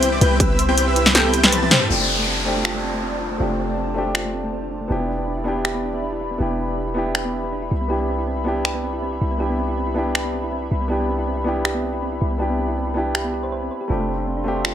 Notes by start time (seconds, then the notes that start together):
Already playing: C2 C3 G3 B3 D4 E4 C5
0.02 C4, closed hi-hat
0.12 C4 E4 G4 B4 D5 D6
0.21 C2 C4 E4 G4 B4 G5 G6, closed hi-hat
0.31 B3
0.40 C4 E4 G4 B4 E5 E6, kick, closed hi-hat
0.50 B3
0.59 C4 C5, closed hi-hat
0.68 B3 C4 E4 G4 B4 G5 G6
0.77 C4, closed hi-hat
0.87 C4 E4 G4 B4 E5 E6
0.96 E4, closed hi-hat
1.06 B3, snare
1.15 C4 E4 G4 A4 B4 G5 G6, snare, closed hi-hat
1.25 B3
1.34 G4, closed hi-hat
1.43 C4 E4 G4 B4 C5 A5 A6, snare
1.52 C5, closed hi-hat, high tom
1.62 C4 E4 G4 B4 A5 A6, high tom
1.71 C5, snare, closed hi-hat, mid tom
1.81 G4, mid tom
1.88 F1 A3 C4 D4 F4 G4 C5 D5 A5, downlifter
2.00 A3
2.09 C4
2.18 A3
2.27 C4
2.37 D4
2.44 A3 C4 D4
2.48 G4
2.56 A3
2.65 F4, finger snap
2.75 A3
2.84 C4
2.94 A3
3.02 C4
3.12 D4
3.21 D4
3.31 A3
3.38 F1 A3 C4 D4 F4
3.42 G4
3.50 A3
3.59 C4
3.69 A3
3.78 C4
3.87 D4
3.94 A3 C4 D4 G4
4.06 A3
4.15 F4, finger snap
4.25 A3
4.34 C4
4.43 A3
4.52 C4
4.62 D4
4.71 D4
4.81 A3
4.88 E1 B3 D4 E4 G4 D5 E5 B5
5.00 B3
5.08 D4
5.18 B3
5.27 D4
5.37 E4
5.44 B3 D4 E4 G4
5.56 B3
5.65 G4, finger snap
5.75 B3
5.84 D4
5.93 B3
6.02 D4
6.12 E4
6.21 E4
6.31 B3
6.38 E1 B3 D4 E4 G4
6.50 B3
6.59 D4
6.69 B3
6.78 D4
6.87 E4
6.94 B3 D4 E4
6.98 G4
7.06 B3
7.15 G4, finger snap
7.25 B3
7.34 D4
7.44 B3
7.52 D4
7.62 E4
7.71 C2 E4
7.81 B3
7.88 B3 D4 E4 G4
7.92 G4
8.00 B3
8.09 C4
8.18 E4
8.27 C4
8.37 E4
8.44 B3 D4 E4 G4
8.56 B3
8.65 G4, finger snap
8.75 B3
8.84 C4
8.93 E4
9.02 C4
9.12 E4
9.21 C2 E4
9.31 B3
9.38 B3 D4 E4 G4
9.50 B3
9.59 C4
9.68 E4
9.77 C4
9.87 E4
9.94 B3 D4 E4
9.98 G4
10.06 B3
10.15 G4, finger snap
10.25 B3
10.34 C4
10.43 E4
10.52 C4
10.62 E4
10.71 C2 E4
10.81 B3
10.88 B3 D4 E4 G4
10.92 G4
11.00 B3
11.09 C4
11.18 E4
11.27 C4
11.37 E4
11.44 B3 D4 E4 G4
11.56 B3
11.65 G4, finger snap
11.75 B3
11.83 C4
11.93 E4
12.02 C4
12.12 E4
12.21 C2 E4
12.31 B3
12.38 B3 D4 E4 G4
12.50 B3
12.58 C4
12.68 E4
12.77 C4
12.87 E4
12.94 B3 D4 E4 G4
13.06 B3
13.15 G4, finger snap
13.25 B3
13.34 G4
13.43 C5
13.52 C5
13.62 C4
13.71 C5
13.81 G4
13.88 F1 A3 C4 D4 F4 G4 A4 D5 F5 C6
13.99 A3
14.08 C4
14.18 D4
14.27 C4
14.37 D4
14.44 A3 C4 D4 G4
14.56 A4
14.65 F4, finger snap